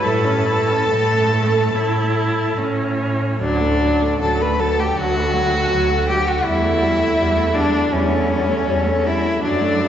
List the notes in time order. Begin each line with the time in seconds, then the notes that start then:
0.02 A2 E4 A4 A5
0.24 C#4
0.45 E4
0.68 C#4
0.88 A2 A3
1.73 A2 E4
2.58 A2 C#4
3.41 D2 F#3 D4 D5
3.61 A3
3.82 F#3
4.02 A3
4.20 D2 F#3 A4 A5
4.40 A3 B4 B5
4.59 F#3 A4 A5
4.78 A3 G4 G5
4.96 D2 F#3 F#4 F#5
5.16 A3
5.34 F#3
5.54 A3
5.71 D2 F#3
5.90 A3
6.08 F#3 G4 G5
6.27 A3 F#4 F#5
6.45 E2 G3 E4 E5
6.63 A3
6.82 G3
6.99 A3
7.17 E2 G3
7.35 A3
7.53 G3 D4 D5
7.72 A3
7.91 E2 G3 C#4 C#5
8.10 A3
8.29 G3
8.48 A3
8.67 E2 G3
8.86 A3
9.05 G3 E4 E5
9.24 A3
9.42 F#2 F#3 D4 D5
9.61 A3
9.80 F#3